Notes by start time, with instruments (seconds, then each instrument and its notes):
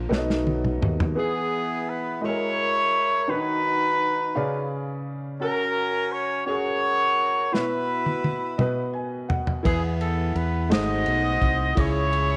Already playing: upright piano A#2 F4 A#4 D5, french horn section F3 A#3 D4 F4
0.09 fingered electric bass B1, upright piano B2 B3 D#4 F#4 A4 C#5, french horn section F#3 A3 B3 D#4, snare
0.17 upright piano D#5
0.30 snare
0.47 high tom
0.65 mid tom
0.82 fingered electric bass D#2, mid tom
1.00 floor tom
1.15 upright piano E3 B3 E4 G#4, horn section B3 E4
1.19 horn section G#4
1.88 horn section B4
2.21 upright piano G#3 E4 F#4 A4 D#5, horn section E4 A#4 C#5
2.29 upright piano A#4
3.27 upright piano D#3 D4 F#4 B4, horn section D#4 F#4 B4
3.33 upright piano D#4
4.35 upright piano C#3 C#4 G#4 B4 D5 F5
5.40 upright piano C#4 F#4 A#4, horn section C#4 F#4 A#4
6.12 horn section C#5
6.46 upright piano C#4 F#4 G#4, horn section F#4 A#4 C#5
7.52 upright piano B2 E4 F#4 B4, horn section E4 F#4 B4, snare
8.06 high tom
8.24 high tom
8.58 upright piano B2 F#4 B4 D#5, mid tom
8.93 upright piano G#5
9.29 upright piano F#5, floor tom
9.47 floor tom
9.63 fingered electric bass E2, upright piano E3 E4 B4 G#5, horn section B3 E4 G#4, kick, ride
10.01 horn section A4, ride
10.35 fingered electric bass E2, horn section B4, ride
10.69 fingered electric bass G#1, upright piano G#2 A3 D#4 F#4 G#4 C5, horn section F#4 C5 D#5, snare, ride
11.06 fingered electric bass B1, ride
11.42 fingered electric bass C2, kick, ride
11.75 fingered electric bass C#2, upright piano C#3 E4 G#4 C#5, horn section C#5, kick, ride
11.79 horn section E4 G#4
12.13 ride